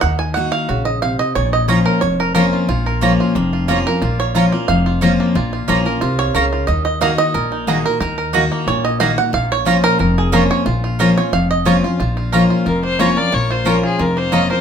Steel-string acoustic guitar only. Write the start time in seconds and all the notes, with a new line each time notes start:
0.02 D#3
0.36 D#3 A#3 D#4 F#4
0.69 C#3
1.03 C3
1.36 A#2
1.68 F3 A#3 C#4 F4
2.02 F2
2.35 F3 A#3 C#4 F4
2.69 A#2
3.02 F3 A#3 C#4 F4
3.36 F2
3.69 F3 A#3 C#4 F4
3.87 C#4 F4
4.02 A#2
4.35 F3 A#3 C#4 F4
4.53 C#4 F4
4.69 F2
5.02 F3 A#3 C#4 F4
5.35 A#2
5.68 F3 A#3 C#4 F4
5.85 C#4 F4
6.02 C3
6.35 C#3
6.68 D#3
7.01 D#3 A#3 D#4 F#4
7.34 A#2
7.67 D#3 A#3 D#4 F#4
7.86 D#4 F#4
8.02 D#3
8.34 D#3 A#3 D#4 F#4
8.68 A#2
9.00 D#3 A#3 D#4 F#4
9.17 D#4 F#4
9.33 A#2
9.65 F3 A#3 C#4 F4
9.99 F2
10.32 F3 A#3 C#4 F4
10.66 A#2
10.99 F3 A#3 C#4 F4
11.17 C#4 F4
11.33 F2
11.66 F3 A#3 C#4 F4
11.84 C#4 F4
12.00 A#2
12.33 F3 A#3 C#4 F4
12.66 F2
12.99 F3 A#3 C#4 F4
13.16 C#4 F4
13.32 A#2
13.65 F3 A#3 C#4 F4
13.99 F2
14.32 F3 A#3 C#4 F4
14.50 C#4 F4